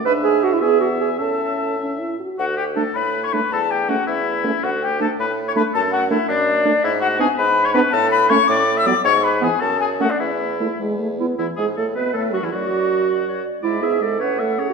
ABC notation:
X:1
M:6/8
L:1/16
Q:3/8=106
K:A
V:1 name="Flute"
b2 g2 f e g2 f2 g2 | a6 z6 | [K:D] f2 g2 a2 b3 c' b2 | a2 g2 f2 e6 |
f2 g2 a2 b3 c' b2 | a2 f2 e2 d6 | [K:A] e2 f2 g2 b3 c' b2 | a2 b2 c'2 d'3 e' d'2 |
c'2 b2 g2 a2 g2 f d | e6 z6 | z6 e6 | d6 d2 c2 d2 |
e6 f6 |]
V:2 name="Oboe"
e6 e6 | e8- e2 z2 | [K:D] F2 G2 A2 B3 c B2 | A2 G2 F2 E6 |
F2 G2 A2 B3 c B2 | A2 F2 E2 D6 | [K:A] E2 F2 G2 B3 c B2 | A2 B2 c2 d3 e d2 |
c2 B2 G2 A2 G2 F D | E6 z6 | E2 G2 A2 B2 A2 F E | F8- F2 z2 |
d2 e2 d2 c2 e2 c2 |]
V:3 name="Clarinet"
B2 G2 F E G2 F2 G2 | A6 z6 | [K:D] z4 D z4 z D z | z4 C z4 z C z |
z4 D z4 z D z | z4 D z4 z D z | [K:A] z4 D z4 z D z | z4 C z4 z B, z |
z4 B, z4 z C z | z4 E z4 z E z | E2 G2 A2 B2 A2 F E | F8- F2 z2 |
E2 G2 A2 B2 A2 G F |]
V:4 name="French horn"
D6 B,6 | C6 C2 E2 F2 | [K:D] z4 A, z4 z A, z | z4 A, z4 z A, z |
z4 A, z4 z A, z | z4 A, z4 z A, z | [K:A] z4 B, z4 z B, z | z4 A, z4 z F, z |
z4 E, z4 z A, z | z4 A, z G,2 A,2 B,2 | E,2 G,2 A,2 B,2 A,2 F, E, | F,8- F,2 z2 |
G,2 B,2 G,2 C2 A,2 C2 |]
V:5 name="Bassoon" clef=bass
G,,6 E,,6 | A,,8- A,,2 z2 | [K:D] D,,6 A,,6 | E,,6 E,,6 |
D,,6 A,,6 | F,,6 F,,6 | [K:A] G,,6 G,,6 | A,,6 A,,6 |
G,,6 F,,6 | E,,6 E,,6 | E,,2 G,,2 A,,2 B,,2 A,,2 F,, E,, | F,,8- F,,2 z2 |
G,,6 A,,6 |]